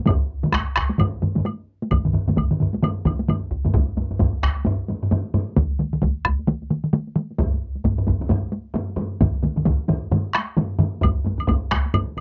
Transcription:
0.06 taiko loud
0.06 taiko low-mid loud
0.06 taiko mid loud
0.06 taiko high medium
0.06 high woodblock soft
0.43 taiko low-mid medium
0.43 taiko mid medium
0.43 taiko high medium
0.52 taiko rim medium
0.52 taiko medium
0.52 taiko high medium
0.52 high woodblock soft
0.54 taiko rim medium
0.76 taiko rim medium
0.76 taiko medium
0.78 taiko rim medium
0.89 taiko high medium
0.98 taiko low-mid loud
0.98 taiko mid medium
0.98 taiko high medium
0.98 high woodblock medium
1.22 taiko low-mid medium
1.22 taiko mid medium
1.22 taiko high medium
1.35 taiko low-mid medium
1.35 taiko mid medium
1.35 taiko high medium
1.45 taiko high medium
1.45 high woodblock soft
1.82 taiko high medium
1.91 taiko medium
1.91 taiko low-mid medium
1.91 taiko mid medium
1.91 taiko high medium
1.91 high woodblock soft
2.05 taiko low-mid medium
2.05 taiko mid medium
2.13 taiko low-mid medium
2.13 taiko mid medium
2.28 taiko low-mid medium
2.28 taiko mid medium
2.28 taiko high medium
2.36 taiko medium
2.36 taiko low-mid medium
2.36 taiko mid medium
2.36 taiko high medium
2.36 high woodblock soft
2.51 taiko low-mid medium
2.51 taiko mid medium
2.60 taiko low-mid medium
2.60 taiko mid medium
2.74 taiko high medium
2.83 taiko low-mid loud
2.83 taiko mid medium
2.83 taiko high medium
2.83 high woodblock medium
3.05 taiko medium
3.05 taiko low-mid loud
3.05 taiko mid loud
3.05 taiko high soft
3.05 high woodblock soft
3.19 taiko high medium
3.28 taiko low-mid medium
3.28 taiko mid loud
3.28 taiko high medium
3.28 high woodblock soft
3.51 taiko medium
3.65 taiko low-mid medium
3.65 taiko mid medium
3.65 taiko high medium
3.74 taiko loud
3.74 taiko low-mid loud
3.74 taiko high medium
3.88 taiko high soft
3.97 taiko low-mid medium
3.97 taiko high medium
4.10 taiko low-mid medium
4.10 taiko high soft
4.19 taiko medium
4.19 taiko low-mid loud
4.19 taiko high medium
4.33 taiko high soft
4.43 taiko rim medium
4.43 taiko medium
4.56 taiko high soft
4.65 taiko low-mid loud
4.65 taiko high medium
4.79 taiko high soft
4.88 taiko low-mid medium
4.88 taiko high medium
5.03 taiko low-mid medium
5.11 taiko low-mid loud
5.11 taiko high medium
5.25 taiko high soft
5.34 taiko low-mid loud
5.34 taiko high medium
5.48 taiko high soft
5.57 taiko loud
5.57 taiko mid loud
5.57 taiko high medium
5.71 taiko high soft
5.79 taiko mid medium
5.79 taiko high medium
5.93 taiko mid medium
5.93 taiko high soft
6.02 taiko medium
6.02 taiko mid loud
6.02 taiko high medium
6.25 taiko rim medium
6.25 taiko medium
6.25 taiko high medium
6.39 taiko high soft
6.47 taiko mid medium
6.47 taiko high medium
6.62 taiko high soft
6.70 taiko mid medium
6.70 taiko high medium
6.84 taiko mid medium
6.93 taiko mid loud
6.93 taiko high medium
7.07 taiko high soft
7.16 taiko mid loud
7.16 taiko high medium
7.31 taiko high soft
7.38 taiko loud
7.38 taiko low-mid loud
7.38 taiko high medium
7.54 taiko high soft
7.75 taiko high soft
7.84 taiko medium
7.84 taiko low-mid medium
7.84 taiko high medium
7.98 taiko low-mid medium
8.07 taiko medium
8.07 taiko low-mid medium
8.07 taiko high medium
8.20 taiko low-mid medium
8.20 taiko high soft
8.29 taiko low-mid loud
8.29 taiko high medium
8.43 taiko high soft
8.52 taiko high medium
8.74 taiko low-mid loud
8.74 taiko high medium
8.89 taiko high soft
8.97 taiko low-mid loud
8.97 taiko high medium
9.12 taiko high soft
9.21 taiko loud
9.21 taiko low-mid loud
9.21 taiko mid loud
9.21 taiko high medium
9.35 taiko high soft
9.43 taiko low-mid medium
9.43 taiko mid medium
9.43 taiko high medium
9.56 taiko low-mid medium
9.56 taiko mid medium
9.56 taiko high soft
9.65 taiko medium
9.65 taiko low-mid loud
9.65 taiko mid loud
9.65 taiko high medium
9.88 taiko low-mid loud
9.88 taiko mid loud
9.88 taiko high medium
10.03 taiko high soft
10.12 taiko low-mid loud
10.12 taiko mid medium
10.12 taiko high medium
10.26 taiko high soft
10.35 taiko rim medium
10.35 taiko high medium
10.57 taiko low-mid loud
10.57 taiko mid loud
10.57 taiko high medium
10.71 taiko high soft
10.79 taiko low-mid loud
10.79 taiko mid loud
10.79 taiko high medium
10.95 taiko high soft
11.01 taiko medium
11.01 taiko low-mid loud
11.01 taiko high medium
11.01 high woodblock medium
11.18 taiko high soft
11.25 taiko low-mid medium
11.25 taiko high medium
11.38 taiko low-mid medium
11.38 taiko high soft
11.38 high woodblock soft
11.48 taiko medium
11.48 taiko low-mid loud
11.48 taiko high medium
11.48 high woodblock soft
11.71 taiko rim medium
11.71 taiko medium
11.71 taiko high medium
11.71 high woodblock soft
11.86 taiko high soft
11.94 taiko low-mid loud
11.94 taiko high medium
11.94 high woodblock medium
12.08 taiko high soft
12.17 taiko low-mid medium

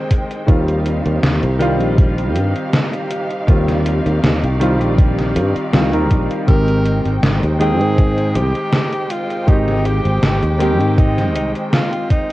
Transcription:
0.00 0.43 D#3 medium
0.00 0.44 G#3 medium
0.00 0.44 C4 medium
0.00 12.32 D#4 medium
0.00 0.45 G4 loud
0.00 3.44 C5 medium
0.00 0.44 G5 medium
0.11 kick medium
0.11 closed hi-hat loud
0.31 closed hi-hat soft
0.46 1.00 D#2 loud
0.46 1.56 D#3 medium
0.46 1.56 G3 medium
0.46 1.57 C4 medium
0.46 1.57 F4 medium
0.46 6.44 G4 medium
0.46 6.44 F5 medium
0.46 kick loud
0.46 closed hi-hat medium
0.68 closed hi-hat soft
0.86 closed hi-hat medium
1.06 1.20 D#2 medium
1.06 closed hi-hat soft
1.23 1.40 D#2 medium
1.23 snare loud
1.23 closed hi-hat medium
1.43 1.81 C2 loud
1.43 closed hi-hat soft
1.59 3.43 D#3 medium
1.59 3.44 G3 medium
1.59 3.44 C4 medium
1.59 3.45 F4 loud
1.59 closed hi-hat loud
1.81 2.36 A#1 medium
1.81 closed hi-hat soft
1.98 kick loud
1.98 closed hi-hat medium
2.18 closed hi-hat soft
2.36 2.53 G2 loud
2.36 closed hi-hat loud
2.56 closed hi-hat soft
2.73 snare loud
2.73 closed hi-hat medium
2.93 closed hi-hat soft
3.11 closed hi-hat medium
3.31 closed hi-hat soft
3.47 4.00 D#2 medium
3.47 4.56 D#3 medium
3.47 4.56 G3 medium
3.47 4.57 C4 medium
3.47 4.57 F4 medium
3.47 6.45 D5 medium
3.47 kick loud
3.47 closed hi-hat medium
3.68 snare soft
3.68 closed hi-hat soft
3.86 closed hi-hat medium
4.06 4.20 D#2 medium
4.06 closed hi-hat soft
4.23 4.40 D#2 medium
4.23 snare loud
4.23 closed hi-hat medium
4.43 4.81 C2 medium
4.43 closed hi-hat soft
4.60 5.69 D#3 medium
4.60 5.70 G3 medium
4.60 5.70 C4 medium
4.60 5.71 F4 loud
4.60 closed hi-hat medium
4.81 5.37 A#1 medium
4.81 closed hi-hat soft
4.98 kick loud
4.98 closed hi-hat medium
5.18 snare soft
5.18 closed hi-hat soft
5.36 5.52 G2 loud
5.36 closed hi-hat medium
5.56 muted fretless electric bass stroke soft
5.56 closed hi-hat soft
5.72 5.94 C2 medium
5.72 5.88 D#3 medium
5.72 5.88 G3 medium
5.72 5.88 C4 medium
5.72 5.89 F4 medium
5.72 snare loud
5.72 closed hi-hat medium
5.92 6.11 D#2 medium
5.92 6.43 D#3 medium
5.92 6.44 G3 medium
5.92 6.44 C4 medium
5.92 6.44 A#4 medium
5.92 closed hi-hat soft
6.11 6.27 A#1 medium
6.11 kick medium
6.11 closed hi-hat medium
6.31 closed hi-hat soft
6.46 7.00 G#1 loud
6.46 7.56 D#3 medium
6.46 7.56 G#3 medium
6.46 12.32 G#3 medium
6.46 7.57 C4 medium
6.46 7.57 G4 medium
6.46 7.19 A#4 loud
6.46 12.32 C5 medium
6.46 12.32 G5 medium
6.46 kick loud
6.46 closed hi-hat medium
6.68 closed hi-hat soft
6.86 closed hi-hat medium
7.06 7.20 G#1 medium
7.06 closed hi-hat soft
7.23 7.40 G#1 medium
7.23 snare loud
7.23 closed hi-hat medium
7.43 7.81 D#2 loud
7.43 closed hi-hat soft
7.59 9.43 D#3 medium
7.59 9.44 G#3 medium
7.59 9.44 C4 medium
7.59 8.38 G#4 loud
7.59 9.45 G5 loud
7.59 closed hi-hat medium
7.81 8.37 G#2 loud
7.81 closed hi-hat soft
7.98 kick loud
7.98 closed hi-hat medium
8.18 closed hi-hat soft
8.36 8.52 C2 loud
8.36 9.12 G4 loud
8.36 closed hi-hat medium
8.56 closed hi-hat soft
8.73 snare loud
8.73 closed hi-hat medium
8.93 closed hi-hat soft
9.10 9.50 F4 loud
9.10 closed hi-hat medium
9.31 closed hi-hat soft
9.47 10.00 G#1 loud
9.47 10.56 D#3 medium
9.47 10.56 G#3 medium
9.47 10.57 C4 medium
9.47 9.88 D#4 loud
9.47 10.57 G4 medium
9.47 kick loud
9.47 closed hi-hat medium
9.68 snare soft
9.68 closed hi-hat soft
9.85 10.60 G4 loud
9.85 closed hi-hat medium
10.05 10.20 G#1 medium
10.05 closed hi-hat soft
10.23 10.40 G#1 medium
10.23 snare loud
10.23 closed hi-hat medium
10.43 10.80 D#2 loud
10.43 closed hi-hat soft
10.59 12.32 D#3 medium
10.59 12.32 G#3 medium
10.59 12.32 C4 medium
10.59 11.00 G4 loud
10.59 12.32 G4 loud
10.59 closed hi-hat medium
10.80 11.35 G#2 medium
10.80 closed hi-hat soft
10.98 11.35 D#4 loud
10.98 kick loud
10.98 closed hi-hat medium
11.18 snare soft
11.18 closed hi-hat soft
11.35 11.52 C2 loud
11.35 11.52 D#4 medium
11.35 closed hi-hat medium
11.55 closed hi-hat soft
11.73 12.08 F4 loud
11.73 snare loud
11.73 closed hi-hat medium
11.93 closed hi-hat soft
12.10 12.32 D#4 loud
12.10 kick medium
12.10 closed hi-hat medium

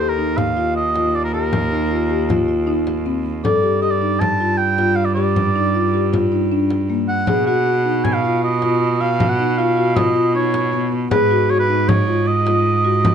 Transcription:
0.00 3.46 D#2 medium
0.00 0.13 G4 medium
0.00 0.11 C5 medium
0.09 0.39 A#4 medium
0.18 0.46 D#4 medium
0.37 0.76 F5 medium
0.37 frame drum soft
0.57 0.84 F4 medium
0.57 frame drum soft
0.76 1.17 D#5 medium
0.94 1.22 F4 medium
0.94 frame drum soft
1.15 1.24 D5 medium
1.15 frame drum soft
1.24 1.33 A#4 medium
1.34 1.61 G4 medium
1.34 2.45 A#4 medium
1.34 frame drum soft
1.53 frame drum soft
1.72 1.86 D#4 medium
1.72 frame drum soft
1.91 2.05 F4 medium
2.10 2.24 G4 medium
2.29 2.43 F4 medium
2.29 frame drum soft
2.48 2.62 F4 medium
2.48 frame drum soft
2.67 2.95 D#4 medium
2.87 frame drum soft
3.06 3.33 C4 medium
3.06 frame drum soft
3.26 frame drum soft
3.44 7.29 G2 medium
3.44 3.58 A4 medium
3.44 3.80 D5 medium
3.44 frame drum medium
3.63 3.77 G4 medium
3.63 frame drum soft
3.82 3.96 G4 medium
3.82 3.92 D#5 medium
3.91 4.22 D5 medium
4.02 4.29 D#4 medium
4.20 4.59 A5 medium
4.20 frame drum soft
4.40 4.68 F4 medium
4.40 frame drum soft
4.58 4.97 G5 medium
4.78 5.06 F4 medium
4.78 frame drum soft
4.96 5.07 F5 medium
4.96 frame drum soft
5.05 5.14 D5 medium
5.15 5.44 G4 medium
5.15 6.27 D5 medium
5.15 frame drum soft
5.36 frame drum soft
5.56 5.69 D#4 medium
5.75 5.88 F4 medium
5.94 6.07 G4 medium
5.94 frame drum soft
6.13 6.26 F4 medium
6.13 frame drum soft
6.32 6.46 D#4 medium
6.32 frame drum soft
6.52 6.79 D4 medium
6.71 frame drum soft
6.90 7.17 A#3 medium
7.08 7.44 F#5 medium
7.08 frame drum soft
7.27 11.13 B2 medium
7.27 7.42 G#4 medium
7.27 frame drum soft
7.47 7.61 F#4 medium
7.47 8.06 F#5 medium
7.47 frame drum soft
7.66 7.80 F#4 medium
7.85 8.13 D#4 medium
8.04 8.15 G#5 medium
8.04 frame drum soft
8.14 8.43 F5 medium
8.23 8.51 F4 medium
8.23 frame drum soft
8.44 9.03 D#5 medium
8.62 8.90 F4 medium
8.62 frame drum soft
8.82 frame drum soft
9.01 9.28 F#4 medium
9.01 9.31 F5 medium
9.01 frame drum soft
9.20 frame drum medium
9.29 9.59 F#5 medium
9.39 9.53 D#4 medium
9.39 frame drum soft
9.58 9.72 F4 medium
9.58 9.98 F5 medium
9.77 9.91 F#4 medium
9.96 10.10 F4 medium
9.96 10.35 D#5 medium
9.96 frame drum medium
10.15 10.29 F4 medium
10.15 frame drum soft
10.35 10.62 D#4 medium
10.35 10.89 C#5 medium
10.54 frame drum soft
10.73 11.01 B3 medium
10.73 frame drum soft
10.92 frame drum soft
11.11 13.15 G#2 medium
11.11 11.25 G#4 medium
11.11 11.52 B4 medium
11.11 frame drum medium
11.31 11.45 F#4 medium
11.31 frame drum soft
11.50 11.63 F#4 medium
11.50 11.59 C#5 medium
11.60 11.90 B4 medium
11.69 11.97 D#4 medium
11.89 12.29 C#5 medium
11.89 frame drum medium
12.07 12.35 F4 medium
12.07 frame drum soft
12.27 13.15 D#5 medium
12.46 12.73 F4 medium
12.46 frame drum soft
12.66 frame drum soft
12.85 13.12 F#4 medium
12.85 frame drum soft
13.05 frame drum medium

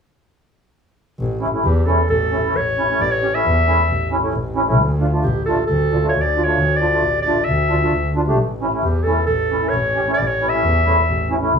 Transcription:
1.19 1.46 A1 medium
1.41 1.47 C#4 medium
1.41 1.47 E4 medium
1.52 1.64 A3 soft
1.52 1.64 C#4 soft
1.52 1.64 E4 soft
1.64 1.91 E2 medium
1.64 1.87 G4 medium
1.86 1.97 A3 medium
1.86 1.98 C#4 medium
1.86 1.98 E4 medium
1.86 2.09 A4 medium
2.09 2.36 A1 medium
2.09 2.58 A4 medium
2.31 2.37 C#4 medium
2.31 2.38 E4 medium
2.43 2.54 A3 medium
2.43 2.55 C#4 soft
2.43 2.55 E4 medium
2.55 2.81 A1 medium
2.55 3.03 C#5 medium
2.78 2.83 C#4 medium
2.78 2.83 E4 medium
2.89 3.00 A3 medium
2.89 3.00 C#4 medium
2.89 3.00 E4 medium
3.00 3.26 A1 medium
3.00 3.13 D5 medium
3.11 3.36 C#5 medium
3.22 3.27 C#4 medium
3.22 3.28 G4 medium
3.34 3.44 A3 medium
3.34 3.45 C#4 soft
3.34 3.45 E4 medium
3.34 4.24 E5 medium
3.45 3.72 E2 medium
3.67 3.78 A3 medium
3.67 3.78 C#4 medium
3.67 3.78 E4 medium
3.89 4.16 A1 medium
4.11 4.17 C#4 medium
4.11 4.17 E4 medium
4.22 4.33 A3 medium
4.22 4.33 C#4 medium
4.22 4.34 E4 medium
4.34 4.80 A1 medium
4.55 4.61 C#4 medium
4.55 4.62 E4 medium
4.67 4.78 A3 medium
4.67 4.79 C#4 medium
4.67 4.79 E4 medium
4.78 5.05 D2 loud
5.00 5.06 D4 medium
5.00 5.07 F4 medium
5.13 5.24 A3 medium
5.13 5.24 D4 soft
5.13 5.24 F4 medium
5.23 5.51 A1 medium
5.23 5.44 G4 medium
5.46 5.58 A3 medium
5.46 5.58 D4 medium
5.46 5.58 F4 medium
5.46 5.66 A4 medium
5.66 5.96 D2 medium
5.66 6.09 A4 medium
5.92 5.97 D4 medium
5.92 5.98 F4 medium
6.02 6.14 A3 soft
6.02 6.14 D4 soft
6.02 6.14 F4 medium
6.09 6.23 C#5 medium
6.14 6.41 D2 medium
6.21 6.45 D5 medium
6.36 6.42 D4 medium
6.36 6.42 F4 medium
6.44 6.58 A3 medium
6.44 6.58 D4 medium
6.44 6.58 F4 medium
6.44 6.78 C#5 medium
6.57 6.85 D2 medium
6.76 7.22 D5 medium
6.80 6.86 D4 medium
6.80 6.87 F4 medium
6.92 7.03 A3 medium
6.92 7.03 D4 soft
6.92 7.04 F4 medium
7.02 7.30 A1 medium
7.22 7.37 A3 medium
7.22 7.46 D5 medium
7.27 7.38 D4 medium
7.27 7.38 F4 medium
7.44 7.75 D2 medium
7.44 8.14 E5 medium
7.69 7.75 D4 medium
7.69 7.76 F4 medium
7.81 7.93 A3 medium
7.81 7.93 D4 soft
7.81 7.94 F4 medium
7.93 8.39 D2 medium
8.15 8.21 D4 medium
8.15 8.22 F4 medium
8.27 8.38 A3 medium
8.27 8.38 D4 medium
8.27 8.39 G4 medium
8.37 8.65 A1 medium
8.61 8.66 C#4 medium
8.61 8.67 E4 medium
8.73 8.84 A3 medium
8.73 8.84 C#4 medium
8.73 8.84 E4 medium
8.82 9.10 E2 medium
8.82 9.05 G4 medium
9.04 9.17 A3 medium
9.04 9.17 C#4 medium
9.04 9.18 E4 medium
9.04 9.26 A4 medium
9.26 9.55 A1 medium
9.26 9.71 A4 medium
9.51 9.56 C#4 medium
9.51 9.57 E4 medium
9.61 9.73 A3 soft
9.61 9.73 C#4 soft
9.61 9.73 E4 soft
9.69 10.00 A1 medium
9.69 10.13 C#5 medium
9.95 10.01 C#4 medium
9.95 10.01 G4 medium
10.06 10.18 A3 medium
10.06 10.18 C#4 medium
10.06 10.19 E4 medium
10.14 10.29 D5 medium
10.18 10.45 A1 medium
10.27 10.51 C#5 medium
10.40 10.46 C#4 medium
10.40 10.47 E4 medium
10.50 10.64 A3 medium
10.50 11.40 E5 medium
10.54 10.64 C#4 soft
10.54 10.64 E4 medium
10.63 10.90 E2 medium
10.85 10.97 A3 medium
10.85 10.97 C#4 medium
10.85 10.97 E4 medium
11.08 11.35 A1 medium
11.31 11.36 C#4 medium
11.31 11.36 E4 medium
11.41 11.52 A3 medium
11.41 11.53 C#4 medium
11.41 11.53 E4 medium
11.52 11.59 C#2 medium

